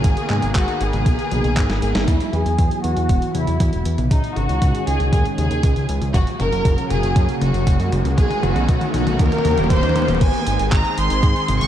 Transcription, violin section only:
0, 0, Header, 1, 2, 480
1, 0, Start_track
1, 0, Tempo, 508475
1, 42, Time_signature, 4, 2, 24, 8
1, 11019, End_track
2, 0, Start_track
2, 0, Title_t, "Violin section"
2, 0, Program_c, 0, 48
2, 0, Note_on_c, 0, 68, 97
2, 521, Note_off_c, 0, 68, 0
2, 521, Note_on_c, 0, 66, 91
2, 744, Note_off_c, 0, 66, 0
2, 763, Note_on_c, 0, 68, 94
2, 1710, Note_off_c, 0, 68, 0
2, 1721, Note_on_c, 0, 68, 79
2, 1944, Note_off_c, 0, 68, 0
2, 1956, Note_on_c, 0, 64, 98
2, 2181, Note_off_c, 0, 64, 0
2, 2198, Note_on_c, 0, 68, 109
2, 2675, Note_on_c, 0, 66, 97
2, 2680, Note_off_c, 0, 68, 0
2, 3124, Note_off_c, 0, 66, 0
2, 3155, Note_on_c, 0, 64, 85
2, 3604, Note_off_c, 0, 64, 0
2, 3878, Note_on_c, 0, 63, 93
2, 4103, Note_off_c, 0, 63, 0
2, 4117, Note_on_c, 0, 66, 104
2, 4597, Note_on_c, 0, 68, 100
2, 4599, Note_off_c, 0, 66, 0
2, 4822, Note_off_c, 0, 68, 0
2, 4839, Note_on_c, 0, 68, 103
2, 4948, Note_off_c, 0, 68, 0
2, 5078, Note_on_c, 0, 68, 94
2, 5526, Note_off_c, 0, 68, 0
2, 5797, Note_on_c, 0, 66, 96
2, 5906, Note_off_c, 0, 66, 0
2, 6039, Note_on_c, 0, 70, 117
2, 6486, Note_off_c, 0, 70, 0
2, 6513, Note_on_c, 0, 68, 102
2, 6963, Note_off_c, 0, 68, 0
2, 6994, Note_on_c, 0, 66, 86
2, 7444, Note_off_c, 0, 66, 0
2, 7720, Note_on_c, 0, 68, 97
2, 7944, Note_off_c, 0, 68, 0
2, 7961, Note_on_c, 0, 66, 94
2, 8426, Note_off_c, 0, 66, 0
2, 8438, Note_on_c, 0, 66, 92
2, 8663, Note_off_c, 0, 66, 0
2, 8679, Note_on_c, 0, 70, 108
2, 9160, Note_off_c, 0, 70, 0
2, 9160, Note_on_c, 0, 72, 103
2, 9495, Note_off_c, 0, 72, 0
2, 9642, Note_on_c, 0, 80, 97
2, 10088, Note_off_c, 0, 80, 0
2, 10121, Note_on_c, 0, 82, 100
2, 10361, Note_off_c, 0, 82, 0
2, 10362, Note_on_c, 0, 84, 109
2, 10924, Note_off_c, 0, 84, 0
2, 10961, Note_on_c, 0, 85, 108
2, 11019, Note_off_c, 0, 85, 0
2, 11019, End_track
0, 0, End_of_file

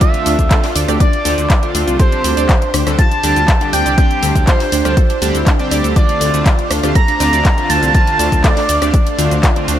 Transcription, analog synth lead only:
0, 0, Header, 1, 2, 480
1, 0, Start_track
1, 0, Tempo, 495868
1, 12, Time_signature, 4, 2, 24, 8
1, 9480, End_track
2, 0, Start_track
2, 0, Title_t, "Analog synth lead"
2, 0, Program_c, 0, 81
2, 11, Note_on_c, 0, 76, 94
2, 692, Note_off_c, 0, 76, 0
2, 971, Note_on_c, 0, 74, 127
2, 1652, Note_off_c, 0, 74, 0
2, 1931, Note_on_c, 0, 72, 126
2, 2613, Note_off_c, 0, 72, 0
2, 2892, Note_on_c, 0, 81, 121
2, 3573, Note_off_c, 0, 81, 0
2, 3612, Note_on_c, 0, 79, 102
2, 3835, Note_off_c, 0, 79, 0
2, 3852, Note_on_c, 0, 79, 110
2, 4298, Note_off_c, 0, 79, 0
2, 4332, Note_on_c, 0, 72, 96
2, 5493, Note_off_c, 0, 72, 0
2, 5771, Note_on_c, 0, 74, 118
2, 6453, Note_off_c, 0, 74, 0
2, 6732, Note_on_c, 0, 82, 124
2, 7452, Note_on_c, 0, 81, 106
2, 7466, Note_off_c, 0, 82, 0
2, 7685, Note_off_c, 0, 81, 0
2, 7691, Note_on_c, 0, 81, 117
2, 8171, Note_on_c, 0, 74, 100
2, 8186, Note_off_c, 0, 81, 0
2, 9371, Note_off_c, 0, 74, 0
2, 9480, End_track
0, 0, End_of_file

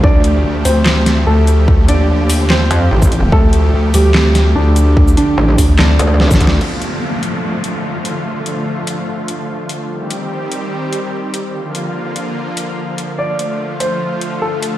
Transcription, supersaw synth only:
0, 0, Header, 1, 2, 480
1, 0, Start_track
1, 0, Tempo, 410959
1, 42, Time_signature, 4, 2, 24, 8
1, 17261, End_track
2, 0, Start_track
2, 0, Title_t, "Supersaw synth"
2, 0, Program_c, 0, 81
2, 0, Note_on_c, 0, 50, 82
2, 0, Note_on_c, 0, 53, 75
2, 0, Note_on_c, 0, 57, 75
2, 41, Note_on_c, 0, 67, 91
2, 7675, Note_off_c, 0, 57, 0
2, 7676, Note_off_c, 0, 50, 0
2, 7676, Note_off_c, 0, 53, 0
2, 7700, Note_off_c, 0, 67, 0
2, 7721, Note_on_c, 0, 50, 76
2, 7721, Note_on_c, 0, 53, 68
2, 7721, Note_on_c, 0, 57, 69
2, 7721, Note_on_c, 0, 65, 82
2, 11523, Note_off_c, 0, 50, 0
2, 11523, Note_off_c, 0, 53, 0
2, 11523, Note_off_c, 0, 57, 0
2, 11523, Note_off_c, 0, 65, 0
2, 11562, Note_on_c, 0, 51, 77
2, 11562, Note_on_c, 0, 55, 69
2, 11562, Note_on_c, 0, 60, 72
2, 11562, Note_on_c, 0, 67, 86
2, 13463, Note_off_c, 0, 51, 0
2, 13463, Note_off_c, 0, 55, 0
2, 13463, Note_off_c, 0, 60, 0
2, 13463, Note_off_c, 0, 67, 0
2, 13482, Note_on_c, 0, 50, 77
2, 13482, Note_on_c, 0, 53, 69
2, 13482, Note_on_c, 0, 58, 70
2, 13482, Note_on_c, 0, 65, 86
2, 15383, Note_off_c, 0, 50, 0
2, 15383, Note_off_c, 0, 58, 0
2, 15383, Note_off_c, 0, 65, 0
2, 15402, Note_on_c, 0, 50, 77
2, 15402, Note_on_c, 0, 57, 72
2, 15402, Note_on_c, 0, 65, 86
2, 17261, Note_off_c, 0, 50, 0
2, 17261, Note_off_c, 0, 53, 0
2, 17261, Note_off_c, 0, 57, 0
2, 17261, Note_off_c, 0, 65, 0
2, 17261, End_track
0, 0, End_of_file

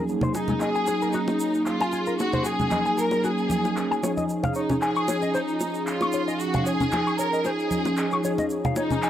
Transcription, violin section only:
0, 0, Header, 1, 2, 480
1, 0, Start_track
1, 0, Tempo, 526316
1, 77, Time_signature, 4, 2, 24, 8
1, 8297, End_track
2, 0, Start_track
2, 0, Title_t, "Violin section"
2, 0, Program_c, 0, 48
2, 315, Note_on_c, 0, 63, 75
2, 539, Note_off_c, 0, 63, 0
2, 552, Note_on_c, 0, 68, 87
2, 1032, Note_on_c, 0, 63, 80
2, 1034, Note_off_c, 0, 68, 0
2, 1514, Note_off_c, 0, 63, 0
2, 1515, Note_on_c, 0, 65, 88
2, 1962, Note_off_c, 0, 65, 0
2, 1998, Note_on_c, 0, 66, 89
2, 2237, Note_off_c, 0, 66, 0
2, 2244, Note_on_c, 0, 68, 96
2, 2720, Note_off_c, 0, 68, 0
2, 2723, Note_on_c, 0, 70, 97
2, 2960, Note_off_c, 0, 70, 0
2, 2966, Note_on_c, 0, 68, 91
2, 3681, Note_off_c, 0, 68, 0
2, 4155, Note_on_c, 0, 63, 72
2, 4379, Note_off_c, 0, 63, 0
2, 4392, Note_on_c, 0, 68, 87
2, 4841, Note_off_c, 0, 68, 0
2, 4868, Note_on_c, 0, 63, 82
2, 5352, Note_off_c, 0, 63, 0
2, 5360, Note_on_c, 0, 65, 86
2, 5805, Note_off_c, 0, 65, 0
2, 5833, Note_on_c, 0, 66, 89
2, 6075, Note_off_c, 0, 66, 0
2, 6076, Note_on_c, 0, 68, 98
2, 6556, Note_off_c, 0, 68, 0
2, 6560, Note_on_c, 0, 70, 98
2, 6798, Note_off_c, 0, 70, 0
2, 6804, Note_on_c, 0, 68, 91
2, 7521, Note_off_c, 0, 68, 0
2, 7996, Note_on_c, 0, 63, 90
2, 8297, Note_off_c, 0, 63, 0
2, 8297, End_track
0, 0, End_of_file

